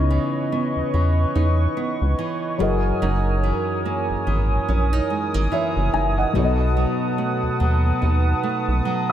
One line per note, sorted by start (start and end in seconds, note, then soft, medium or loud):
0.00 0.19 C#2 loud
0.00 2.55 C#3 medium
0.00 2.70 C#3 medium
0.00 0.52 B3 medium
0.00 2.56 B3 medium
0.00 1.35 D#4 medium
0.00 2.58 E4 medium
0.00 2.35 G#4 medium
0.00 2.57 B4 medium
0.00 6.31 C#5 medium
0.00 2.57 D#5 medium
0.00 2.57 C#6 medium
0.10 0.93 E3 medium
0.52 1.76 B3 medium
0.77 0.84 E2 soft
0.94 1.26 E2 medium
0.94 2.18 E3 medium
1.35 1.68 E2 loud
1.35 3.02 D#4 medium
1.77 2.70 B3 medium
2.02 2.15 C#2 medium
2.19 3.05 E3 medium
2.58 2.93 F#1 medium
2.58 3.01 F#2 medium
2.58 5.47 F#3 medium
2.58 5.47 E4 medium
2.58 5.48 G#4 medium
2.58 6.31 A#4 medium
2.58 5.49 A#4 medium
2.58 6.31 G#5 medium
2.58 9.12 D#6 medium
2.63 5.49 D#5 medium
3.02 3.53 F#1 loud
3.02 6.35 F#2 medium
3.02 4.68 D#4 medium
3.43 4.26 E3 medium
3.85 5.10 A#3 medium
4.10 4.17 G#1 soft
4.27 4.59 G#1 medium
4.27 5.50 E3 medium
4.69 5.01 A#1 loud
4.69 4.93 C#4 medium
4.93 5.92 D#4 medium
5.10 5.34 G#3 medium
5.34 5.48 G#1 medium
5.34 6.45 A#3 soft
5.52 6.45 E3 medium
5.52 5.92 C#5 soft
5.52 5.91 E5 medium
5.77 5.90 F#1 medium
5.94 6.26 F#1 medium
5.94 6.35 D#4 medium
5.94 6.17 E5 medium
5.94 6.16 G#5 medium
6.18 6.43 D#5 medium
6.18 6.57 F#5 medium
6.33 6.86 B1 loud
6.33 9.12 B2 medium
6.33 9.12 F#3 medium
6.33 8.01 D#4 medium
6.33 9.12 A4 medium
6.33 9.12 B4 medium
6.33 9.12 F#5 medium
6.33 9.12 A5 medium
6.38 6.44 C#5 medium
6.44 8.44 D#5 medium
6.77 7.59 F#3 medium
7.18 8.42 A3 medium
7.43 7.50 D#2 soft
7.60 7.93 D#2 medium
7.60 8.84 F#3 medium
8.02 8.34 D#2 loud
8.02 9.12 D#4 medium
8.43 9.12 A3 medium
8.68 8.81 B1 medium
8.85 9.12 F#3 medium